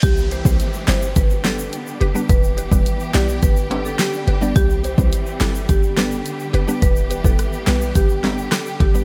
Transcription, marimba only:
\new Staff \with { instrumentName = "Marimba" } { \time 4/4 \key g \major \tempo 4 = 106 g'16 r8 c''16 r8 c''16 r16 b'16 r16 a'16 r4 r16 | b'16 r8 b'8 r16 g'8 b'16 r8 a'16 g'8. r16 | g'16 r8 c''16 r8 a'16 r16 g'16 r16 a'16 r4 r16 | b'16 r8 a'8 r16 b'8 g'8. r16 a'16 r16 g'16 r16 | }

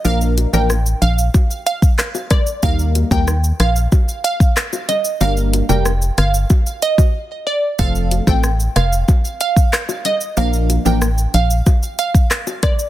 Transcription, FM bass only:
\new Staff \with { instrumentName = "FM bass" } { \clef bass \time 4/4 \key bes \major \tempo 4 = 93 bes,,8. a,,8. bes,,8 r2 | ees,8. ees,8. bes,,8 r2 | g,,8. f,,8. g,,8 r2 | f,,8. a,,8. f,,8 r2 |
bes,,8. a,,8. bes,,8 r2 | }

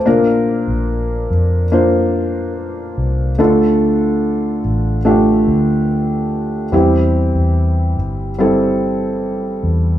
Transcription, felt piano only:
<<
  \new Staff \with { instrumentName = "Felt piano" } { \time 4/4 \key d \minor \tempo 4 = 72 << { c''16 r2. r8. | r1 | r1 | } \\ { <bes d' f' bes'>2 <bes d' f' c''>2 | <a d' f' a'>2 <a d' f' g'>2 | <g c' e' g'>2 <g c' e' a'>2 | } >> }
  \new Staff \with { instrumentName = "Felt piano" } { \clef bass \time 4/4 \key d \minor bes,4. r2 r8 | d4. r2 r8 | e4. r2 r8 | }
>>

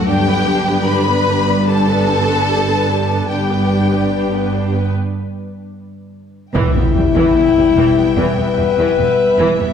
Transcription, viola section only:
\new Staff \with { instrumentName = "Viola section" } { \time 4/4 \key g \major \tempo 4 = 74 <d' g'>16 <b b'>16 <d' g'>16 <b b'>16 <d' g'>16 <b b'>16 <d' g'>16 <b b'>16 <d' g'>16 <b b'>16 <d' g'>16 <b b'>16 <d' g'>16 <b b'>16 <d' g'>16 <b b'>16 | <d' g'>16 <b b'>16 <d' g'>16 <b b'>16 <d' g'>16 <b b'>16 <d' g'>16 <b b'>16 r2 | \key e \minor e16 b16 g16 e16 b16 g16 e16 b16 e16 b16 g16 e16 b16 r16 e16 b16 | }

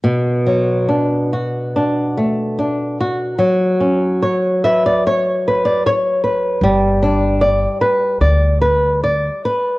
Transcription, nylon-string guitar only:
\new Staff \with { instrumentName = "Nylon-string guitar" } { \time 4/4 \key b \minor \tempo 4 = 73 << { r1 | r4. e''16 d''16 cis''8. d''16 cis''4 | r1 | } \\ { b,8 fis8 d'8 fis'8 d'8 a8 d'8 fis'8 | fis8 cis'8 cis''8 b'8 cis''8 b'8 cis''8 b'8 | g8 d'8 d''8 b'8 d''8 b'8 d''8 b'8 | } >> }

